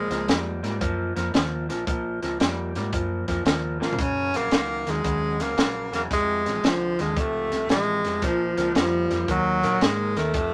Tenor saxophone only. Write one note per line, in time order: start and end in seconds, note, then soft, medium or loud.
0.00 0.60 G#3 medium
3.83 4.03 A#3 medium
4.02 4.38 C#4 loud
4.37 4.91 A#3 loud
4.90 5.43 G#3 medium
5.41 5.94 A#3 medium
5.95 6.03 A#3 medium
6.13 6.68 G#3 loud
6.66 7.02 F3 medium
7.01 7.20 G#3 medium
7.18 7.70 A3 medium
7.71 8.26 G#3 medium
8.24 8.76 F3 medium
8.78 9.32 F3 medium
9.30 9.84 F#3 medium
9.83 10.19 G#3 medium
10.18 10.54 A3 medium